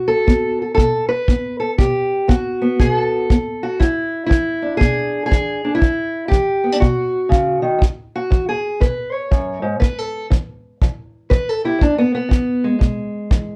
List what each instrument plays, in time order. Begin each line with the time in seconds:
Already playing: steel-string acoustic guitar B2 F#4
0.08 steel-string acoustic guitar A4
0.27 steel-string acoustic guitar B3, kick
0.62 steel-string acoustic guitar A4
0.75 steel-string acoustic guitar A4, kick
0.79 steel-string acoustic guitar B2
1.09 steel-string acoustic guitar B4
1.28 steel-string acoustic guitar B3, kick
1.60 steel-string acoustic guitar A4
1.78 steel-string acoustic guitar B2 G4, kick
2.28 steel-string acoustic guitar B3 F#4, kick
2.62 steel-string acoustic guitar B3
2.80 steel-string acoustic guitar B2 G#4, kick
2.93 steel-string acoustic guitar A4
3.30 steel-string acoustic guitar B3, kick
3.63 steel-string acoustic guitar F#4
3.80 steel-string acoustic guitar E2 E4, kick
4.26 steel-string acoustic guitar E3 E4
4.31 kick
4.62 steel-string acoustic guitar D4
4.77 steel-string acoustic guitar B2 G#4, kick
5.26 steel-string acoustic guitar G#4
5.31 steel-string acoustic guitar E3, kick
5.65 steel-string acoustic guitar D4
5.75 steel-string acoustic guitar E4
5.81 steel-string acoustic guitar E2, kick
6.28 steel-string acoustic guitar E3 G4, kick
6.64 steel-string acoustic guitar B3
6.72 steel-string acoustic guitar D4
6.80 steel-string acoustic guitar B2 F#4, kick
7.29 steel-string acoustic guitar C#3, kick
7.62 steel-string acoustic guitar D#3
7.79 steel-string acoustic guitar E2, kick
8.16 steel-string acoustic guitar F#4
8.30 steel-string acoustic guitar E3, kick
8.49 steel-string acoustic guitar G#4
8.80 steel-string acoustic guitar B2 B4, kick
9.12 steel-string acoustic guitar C#5
9.31 steel-string acoustic guitar F#2, kick
9.62 steel-string acoustic guitar G#2
9.80 steel-string acoustic guitar A2 B4, kick
9.98 steel-string acoustic guitar A4
10.30 steel-string acoustic guitar E3, kick
10.82 steel-string acoustic guitar E3, kick
11.30 steel-string acoustic guitar E3 B4, kick
11.49 steel-string acoustic guitar A4
11.64 steel-string acoustic guitar E4 G4
11.79 steel-string acoustic guitar E2 D4, kick
11.98 steel-string acoustic guitar B3
12.15 steel-string acoustic guitar B3
12.29 steel-string acoustic guitar E3, kick
12.64 steel-string acoustic guitar G#3
12.79 steel-string acoustic guitar B2, kick
13.31 steel-string acoustic guitar E3, kick